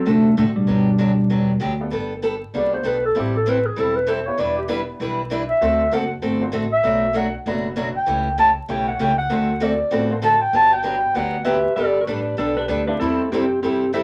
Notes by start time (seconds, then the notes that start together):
Already playing: A3 C4 D4 F#4 A4
0.06 F#2 C3 D3 A3 C4 D4 F#4 A4
0.37 A2 C3 D3 A3 C4 D4 F#4 A4
0.54 B2 G3 D4
0.67 G2 D3 F#3 B3 D4 G4
0.98 F#2 D3 F#3 B3 D4 G4
1.30 E2 D3 F#3 B3 D4 G4
1.60 D2 D3 F#3 B3 D4 G4
1.80 A3 B3 D4 G4 A4
1.91 G1 G3 B3 D4 A4
2.22 G3 B3 D4 A4
2.54 C2 G3 G#3 A#3 B3 C#4 D4 F#4 G#4 A4 D5
2.74 A3 B3 D4 G4 A4 C5
2.83 B1 G3 B3 D4 A4
2.88 B4
3.06 A4
3.15 A1 E3 G3 A3 C4 E4 G4 A4
3.19 G4
3.37 A4
3.46 E3 G3 C4 E4 A4 B4
3.66 G#4
3.76 E1 E3 G3 C4 E4 A4
3.96 B4
4.07 E3 G3 C4 E4 A4 C5
4.26 B3 D4 E4 G4 B4 C#5
4.38 E1 E3 G3 D4 E4 B4 D5
4.58 G4
4.68 E3 G3 B3 D4 E4 G4 B4
5.00 B1 E3 G3 D4 E4 B4
5.30 E3 G3 D4 E4 B4
5.49 E5
5.61 D2 D3 A3 C4 D4 F#4 A4 C5
5.91 F#1 D3 A3 C4 F#4 A4 F#5
6.22 G1 D3 A3 C4 F#4 A4
6.41 C4 D4 F#4 A4 C5
6.52 A1 D3 A3 C4 F#4 A4
6.72 E5
6.83 B1 B2 F#3 A3 D4 F#4
7.13 B2 F#3 A3 D4 F#4
7.17 F#5
7.46 F#1 B2 F#3 A3 B3 D4 F#4 A4 B4
7.76 B2 F#3 A3 D4 F#4
7.97 G5
8.06 C#2 C#3 E3 A3 C#4 G4
8.38 C#3 E3 A3 C#4 G4 A5
8.68 B1 C#3 E3 A3 C#4 E4 G4 A4 C#5 G5
8.88 F#5
8.99 C#2 C#3 E3 A3 C#4 G4 G5
9.18 F#5
9.29 D2 D3 A3 C4 D4 F#4 A4 C5
9.60 D3 A3 C4 F#4 A4 D5
9.91 A1 D3 A3 B3 C4 C#4 F4 F#4 G#4 A4 B4
10.11 C4 D4 F#4 A4 C5
10.22 D3 A3 C4 F#4 A4 A5
10.42 G5
10.53 G1 D3 F#3 B3 D4 G4 A5
10.73 G5
10.83 D3 F#3 B3 D4 F#4 G4 B4
11.14 D2 D3 F#3 B3 D4 F#4 G4 A4 F#5
11.45 D3 F#3 B3 D4 G4 B4 E5
11.76 G1 G3 B3 D4 G4 A4 B4 D5
12.01 F#4 A#4
12.07 A1 G3 B3 D4 G4 A4 B4
12.37 B1 G3 B3 D4 A4
12.57 D4 G4 B4
12.68 D2 G3 B3 D4 G4 A4 B4
12.87 A3 C4 D4 E4 G4 A4 B4
13.00 E2 E3 G3 C4 E4 A4
13.31 F#2 E3 G3 C4 E4 G4 A4
13.62 G2 E3 G3 C4 E4 G4 A4
13.93 F#2 E3 G3 C4 E4 G4 A4 C5 E5